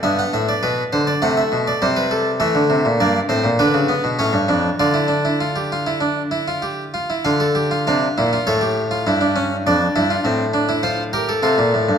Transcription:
<<
  \new Staff \with { instrumentName = "Harpsichord" } { \time 4/4 \key c \major \tempo 4 = 101 << { e''16 fis''16 e''16 d''16 b'8 c''16 d''16 fis''16 e''8 d''16 c''16 b'16 a'8 | \key d \minor e''4 d''8 c''8 b'4 cis''4 | d''2.~ d''8 r8 | f''4 f''4 cis''2 |
d''2 c''8 bes'8 a'4 | } \\ { b2 a4 g4 | a4 bes8 c'8 d'8 b8 cis'8 d'8 | f'16 e'16 d'16 e'16 f'16 g'16 f'16 e'16 d'8 e'16 f'16 g'8 f'16 e'16 | f'16 a'16 g'16 f'16 d'8 e'16 f'16 a'16 g'8 f'16 e'16 d'16 cis'8 |
d'8 e'16 f'16 c'8 d'16 e'16 f'8 g'16 a'16 f'4 | } >> }
  \new Staff \with { instrumentName = "Harpsichord" } { \clef bass \time 4/4 \key c \major g,8 a,8 b,8 d8 c8 b,8 c4 | \key d \minor e16 d16 c16 bes,16 g,8 a,16 bes,16 d16 cis8 b,16 a,16 g,16 f,8 | d2.~ d8 r8 | d4 c8 bes,8 a,4 g,4 |
f,8 g,8 a,2 c16 bes,16 a,16 g,16 | }
>>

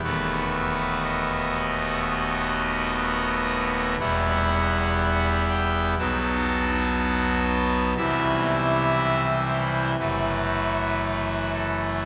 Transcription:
<<
  \new Staff \with { instrumentName = "Pipe organ" } { \time 4/4 \key b \phrygian \tempo 4 = 60 b'4 dis''4 dis''2 | fis''4. g''8 a''2 | e''4. c''8 b'4. a'8 | }
  \new Staff \with { instrumentName = "Pipe organ" } { \clef bass \time 4/4 \key b \phrygian <dis,, dis, a b fis'>1 | <e,, e, g b e'>2 <b,, b, fis b dis'>2 | <c, c e g e'>2 <fis,, fis, e a fis'>2 | }
>>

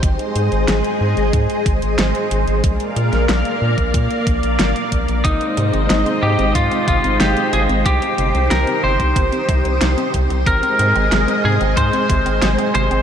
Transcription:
<<
  \new Staff \with { instrumentName = "Lead electric guitar" } { \time 4/4 \key aes \lydian \tempo 4 = 92 r1 | r1 | ees'4. g'8 f'8 f'8 g'8 aes'8 | g'4 bes'8 c''2 r8 |
bes'4. aes'8 c''4. c''8 | }
  \new Staff \with { instrumentName = "String machine" } { \time 4/4 \key aes \lydian <aes aes' c'' ees''>1 | <bes bes' d'' f''>1 | <aes ees' c'' ees''>1 | <ees' g'>1 |
<aes aes' ees''>1 | }
  \new Staff \with { instrumentName = "Synth arpeggio sound" } { \clef bass \time 4/4 \key aes \lydian r1 | r1 | c16 c'16 c16 c'16 c16 c'16 c16 c'16 c16 c'16 c16 c'16 c16 c'16 c16 c'16 | c16 c'16 c16 c'16 c16 c'16 c16 c'16 c16 c'16 c16 c'16 c16 c'16 c16 c'16 |
c16 c'16 c16 c'16 c16 c'16 c16 c'16 c16 c'16 c16 c'16 c16 c'16 c16 c'16 | }
  \new Staff \with { instrumentName = "Analog synth bass" } { \clef bass \time 4/4 \key aes \lydian aes,,16 r16 aes,16 aes,,16 aes,,16 r16 aes,16 aes,,16 aes,16 r16 aes,,16 aes,,16 aes,,16 r16 aes,,16 aes,,16 | bes,,16 r16 bes,16 bes,,16 bes,,16 r16 bes,16 bes,,16 bes,16 r16 bes,,16 bes,,16 aes,,16 r16 bes,,16 bes,,16 | aes,,16 r16 aes,16 aes,,16 aes,,16 r16 aes,16 aes,,16 aes,16 r16 aes,,16 aes,,16 aes,,16 r16 aes,,16 aes,,16 | c,16 r16 g,,16 c,16 c,16 r16 g,,16 c,16 g,,16 r16 c,16 c,16 c,16 r16 c,16 c,16 |
aes,,16 r16 aes,16 aes,,16 aes,,16 r16 aes,16 aes,,16 aes,16 r16 aes,,16 aes,,16 aes,,16 r16 aes,,16 aes,,16 | }
  \new DrumStaff \with { instrumentName = "Drums" } \drummode { \time 4/4 <hh bd>16 hh16 hh16 hh16 <hh sn>16 hh8 hh16 <hh bd>16 hh16 <hh bd>16 hh16 <hh sn>16 hh16 hh16 hh16 | <hh bd>16 hh16 hh16 <hh sn>16 <hh sn>16 hh8 <hh bd>16 <hh bd>16 hh16 <hh bd>16 hh16 <hh sn>16 hh16 <hh bd>16 hh16 | <hh bd>16 hh16 hh16 hh16 <hh sn>16 hh8 hh16 <hh bd>16 hh16 <hh bd>16 hh16 <hh sn>16 hh16 hh16 hh16 | <hh bd>16 hh16 hh16 hh16 <hh sn>16 hh8 <hh bd>16 <hh bd>16 hh16 <hh bd>16 hh16 <hh sn>16 hh16 <hh bd>16 hh16 |
<hh bd>16 hh16 hh16 hh16 <hh sn>16 hh8 hh16 <hh bd>16 hh16 <hh bd>16 hh16 <hh sn>16 hh16 hh16 hh16 | }
>>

